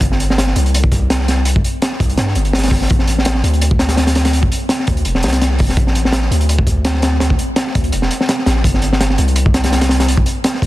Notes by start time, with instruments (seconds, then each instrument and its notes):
0.01 808-style bass G1, kick, closed hi-hat
0.12 snare
0.20 closed hi-hat
0.30 snare
0.38 snare, closed hi-hat
0.47 snare
0.56 808-style bass C2, closed hi-hat
0.66 closed hi-hat
0.74 closed hi-hat
0.84 kick
0.92 kick, closed hi-hat
1.10 snare, closed hi-hat
1.20 snare
1.28 snare, closed hi-hat
1.45 closed hi-hat
1.56 kick
1.64 closed hi-hat
1.82 snare, closed hi-hat
1.92 snare
2.00 808-style bass C2, kick, closed hi-hat
2.09 closed hi-hat
2.17 808-style bass G2, snare, closed hi-hat
2.27 snare
2.35 808-style bass G1, closed hi-hat
2.45 closed hi-hat
2.53 snare, closed hi-hat
2.58 snare, closed hi-hat
2.63 snare, closed hi-hat
2.68 808-style bass G1, kick, snare, closed hi-hat
2.72 open hi-hat
2.82 snare
2.90 808-style bass A1, kick, closed hi-hat
2.99 snare
3.07 closed hi-hat
3.18 snare
3.25 snare, closed hi-hat
3.35 snare
3.43 808-style bass D2, closed hi-hat
3.53 closed hi-hat
3.61 closed hi-hat
3.71 kick
3.79 snare, closed hi-hat
3.89 snare, closed hi-hat
3.97 snare, closed hi-hat
4.07 snare, closed hi-hat
4.15 snare, closed hi-hat
4.25 snare, closed hi-hat
4.33 closed hi-hat
4.43 kick
4.52 closed hi-hat
4.69 snare, closed hi-hat
4.79 snare
4.87 808-style bass D2, kick, closed hi-hat
4.97 closed hi-hat
5.05 808-style bass E1, closed hi-hat
5.15 snare
5.23 808-style bass C2, snare, closed hi-hat
5.28 snare, closed hi-hat
5.32 snare, closed hi-hat
5.41 snare, closed hi-hat
5.51 snare
5.58 808-style bass E1, kick, open hi-hat
5.69 snare
5.77 808-style bass A1, kick, closed hi-hat
5.87 snare
5.95 closed hi-hat
6.05 snare
6.12 snare, closed hi-hat
6.22 snare
6.31 808-style bass D2, closed hi-hat
6.41 closed hi-hat
6.49 closed hi-hat
6.59 kick
6.67 kick, closed hi-hat
6.85 snare, closed hi-hat
6.94 snare
7.02 snare, closed hi-hat
7.20 snare, closed hi-hat
7.30 kick
7.39 closed hi-hat
7.56 snare, closed hi-hat
7.67 snare
7.75 808-style bass D2, kick, closed hi-hat
7.84 closed hi-hat
7.92 808-style bass E1, closed hi-hat
8.02 snare
8.11 closed hi-hat
8.21 snare
8.29 snare, closed hi-hat
8.39 snare
8.46 808-style bass A1, snare, closed hi-hat
8.56 snare
8.64 808-style bass G1, kick, closed hi-hat
8.74 snare
8.82 closed hi-hat
8.93 snare
9.01 snare, closed hi-hat
9.10 snare
9.18 808-style bass C2, closed hi-hat
9.28 closed hi-hat
9.36 closed hi-hat
9.46 kick
9.54 snare, closed hi-hat
9.64 snare, closed hi-hat
9.72 snare, closed hi-hat
9.81 snare, closed hi-hat
9.89 snare, closed hi-hat
10.00 snare, closed hi-hat
10.08 closed hi-hat
10.17 kick
10.26 closed hi-hat
10.44 snare, closed hi-hat
10.54 snare
10.62 808-style bass C2, kick, closed hi-hat